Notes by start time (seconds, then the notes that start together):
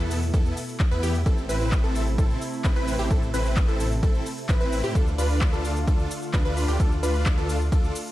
Already playing: B2 A3 E4
0.00 E2 B3 E4 A4
0.11 open hi-hat, shaker
0.23 shaker
0.34 E2 B3 E4 A4, kick, ride, shaker
0.46 shaker
0.57 open hi-hat, shaker
0.69 shaker
0.80 kick, clap, ride, shaker
0.91 E2 B3 E4 B4, shaker
1.03 E2 B3 E4 G4, open hi-hat, shaker
1.15 shaker
1.26 A1 C3 A3 C4 E4 A4, kick, ride, shaker
1.38 shaker
1.49 A1 C4 E4 B4, open hi-hat, shaker
1.61 shaker
1.72 kick, clap, ride, shaker
1.84 A1 C4 E4 A4, shaker
1.95 open hi-hat, shaker
2.07 shaker
2.18 A1 C4 E4 A4, kick, ride, shaker
2.30 shaker
2.41 open hi-hat, shaker
2.53 shaker
2.64 A1 C4 E4 B4, kick, clap, ride, shaker
2.76 A1 C4 E4 B4, shaker
2.88 open hi-hat, shaker
2.99 A1 C4 E4 G4, shaker
3.11 A1 C4 E4 A4, kick, ride, shaker
3.23 shaker
3.34 A1 C4 E4 B4, open hi-hat, shaker
3.46 shaker
3.57 kick, clap, ride, shaker
3.68 A1 C4 E4 A4, shaker
3.80 open hi-hat, shaker
3.92 shaker
4.03 A1 C4 E4 A4, kick, ride, shaker
4.15 shaker
4.26 open hi-hat, shaker
4.38 shaker
4.49 A1 C4 E4 B4, kick, clap, ride, shaker
4.61 A1 C4 E4 B4, shaker
4.72 open hi-hat, shaker
4.84 A2 C4 E4 G4, shaker
4.95 D2 D3 A3 D4 F4 A4, kick, ride, shaker
5.07 shaker
5.18 D2 D4 F4 B4, open hi-hat, shaker
5.30 shaker
5.41 kick, clap, ride, shaker
5.53 D2 D4 F4 A4, shaker
5.64 open hi-hat, shaker
5.76 shaker
5.87 D2 D4 F4 A4, kick, ride, shaker
6.00 shaker
6.11 open hi-hat, shaker
6.23 shaker
6.34 D2 D4 F4 B4, kick, clap, ride, shaker
6.45 D2 D4 F4 B4, shaker
6.57 open hi-hat, shaker
6.68 D2 D4 F4 G4, shaker
6.80 D2 D4 F4 A4, kick, ride, shaker
6.92 shaker
7.03 D2 D4 F4 B4, open hi-hat, shaker
7.15 shaker
7.26 kick, clap, ride, shaker
7.38 D2 D4 F4 A4, shaker
7.49 open hi-hat, shaker
7.61 shaker
7.72 D2 D4 F4 A4, kick, ride, shaker
7.84 shaker
7.95 open hi-hat, shaker
8.07 shaker